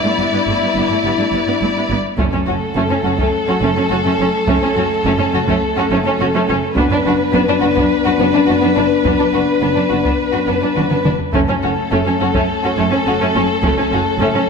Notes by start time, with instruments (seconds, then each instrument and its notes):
Already playing: french horn section B3 E4, violin section E4 D5
0.03 cello section G2, viola section A3
0.17 double bass section G1, cello section G2, viola section B3
0.32 cello section G2, viola section B3
0.46 double bass section G1, cello section G2, viola section A3
0.61 cello section G2, viola section B3
0.75 double bass section G1, cello section G2, viola section B3
0.89 cello section G2, viola section A3
1.03 double bass section G1, cello section G2, viola section B3
1.18 cello section G2, viola section A3
1.32 double bass section G1, cello section G2, viola section B3
1.46 cello section G2, viola section B3
1.61 double bass section G1, cello section G2, viola section A3
1.75 cello section G2, viola section B3
1.89 double bass section G1, cello section G2, viola section B3
2.18 double bass section F#1, cello section F#2, french horn section A3 C#4, violin section A3 A4, viola section C#4, taiko
2.32 cello section F#2, violin section C#4, viola section C#4
2.46 double bass section F#1, cello section F#2, viola section C#4, violin section F#4
2.75 double bass section F#1, cello section F#2, violin section A3, viola section C#4
2.89 cello section F#2, violin section C#4, viola section C#4
3.04 double bass section F#1, cello section F#2, viola section C#4, violin section F#4
3.18 cello section F#2, violin section A3, viola section C#4, taiko
3.47 cello section F#2, viola section C#4, violin section F#4
3.61 double bass section F#1, cello section F#2, violin section A3, viola section C#4
3.76 cello section F#2, violin section C#4, viola section C#4
3.90 double bass section F#1, cello section F#2, viola section C#4, violin section F#4
4.05 cello section F#2, violin section A3, viola section C#4
4.19 double bass section F#1, cello section F#2, violin section C#4, viola section C#4
4.47 double bass section F#1, cello section F#2, violin section A3, viola section C#4, taiko
4.62 cello section F#2, violin section C#4, viola section C#4
4.76 double bass section F#1, cello section F#2, viola section C#4, violin section F#4
5.04 double bass section F#1, cello section F#2, violin section A3, viola section C#4
5.18 cello section F#2, viola section C#4, violin section C#4
5.33 double bass section F#1, cello section F#2, viola section C#4, violin section F#4
5.47 cello section F#2, violin section A3, viola section C#4, taiko
5.76 cello section F#2, viola section C#4, violin section F#4
5.90 double bass section F#1, cello section F#2, violin section A3, viola section C#4
6.05 cello section F#2, viola section C#4, violin section C#4
6.19 double bass section F#1, cello section F#2, viola section C#4, violin section F#4
6.33 cello section F#2, violin section A3, viola section C#4
6.48 double bass section F#1, cello section F#2, viola section C#4, violin section C#4
6.76 double bass section F#1, cello section F#2, french horn section B3 D4, violin section B3 B4, viola section D4, taiko
6.90 cello section F#2, viola section D4, violin section D4
7.05 double bass section F#1, cello section F#2, viola section D4, violin section F#4
7.33 double bass section F#1, cello section F#2, violin section B3, viola section D4
7.48 cello section F#2, viola section D4, violin section D4
7.62 double bass section F#1, cello section F#2, viola section D4, violin section F#4
7.76 cello section F#2, violin section B3, viola section D4, taiko
8.05 cello section F#2, viola section D4, violin section F#4
8.19 double bass section F#1, cello section F#2, violin section B3, viola section D4
8.34 cello section F#2, violin section D4, viola section D4
8.47 double bass section F#1, cello section F#2, viola section D4, violin section F#4
8.61 cello section F#2, violin section B3, viola section D4
8.76 double bass section F#1, cello section F#2, violin section D4, viola section D4
9.04 double bass section F#1, cello section F#2, violin section B3, viola section D4, taiko
9.19 cello section F#2, violin section D4, viola section D4
9.33 double bass section F#1, cello section F#2, viola section D4, violin section F#4
9.62 double bass section F#1, cello section F#2, violin section B3, viola section D4
9.75 cello section F#2, violin section D4, viola section D4
9.90 double bass section F#1, cello section F#2, viola section D4, violin section F#4
10.04 cello section F#2, violin section B3, viola section D4, taiko
10.33 cello section F#2, viola section D4, violin section F#4
10.47 double bass section F#1, cello section F#2, violin section B3, viola section D4
10.62 cello section F#2, violin section D4, viola section D4
10.76 double bass section F#1, cello section F#2, viola section D4, violin section F#4, taiko mid
10.90 cello section F#2, violin section B3, viola section D4, taiko mid
11.05 double bass section F#1, cello section F#2, violin section D4, viola section D4, taiko mid
11.20 taiko low
11.34 double bass section F#1, cello section F#2, violin section A3 A4, french horn section A3 C#4, viola section C#4, taiko
11.49 cello section F#2, violin section C#4, viola section C#4
11.63 double bass section F#1, cello section F#2, viola section C#4, violin section F#4
11.91 double bass section F#1, cello section F#2, violin section A3, viola section C#4
12.06 cello section F#2, violin section C#4, viola section C#4
12.20 double bass section F#1, cello section F#2, viola section C#4, violin section F#4
12.34 cello section F#2, violin section A3, viola section C#4, taiko
12.63 cello section F#2, viola section C#4, violin section F#4
12.77 double bass section F#1, cello section F#2, violin section A3, viola section C#4
12.90 cello section F#2, viola section C#4, violin section C#4
13.06 double bass section F#1, cello section F#2, viola section C#4, violin section F#4
13.20 cello section F#2, violin section A3, viola section C#4
13.35 double bass section F#1, cello section F#2, viola section C#4, violin section C#4
13.63 double bass section F#1, cello section F#2, violin section A3, viola section C#4, taiko
13.77 cello section F#2, viola section C#4, violin section C#4
13.91 double bass section F#1, cello section F#2, viola section C#4, violin section F#4
14.20 double bass section F#1, cello section F#2, violin section A3, viola section C#4
14.35 cello section F#2, viola section C#4, violin section C#4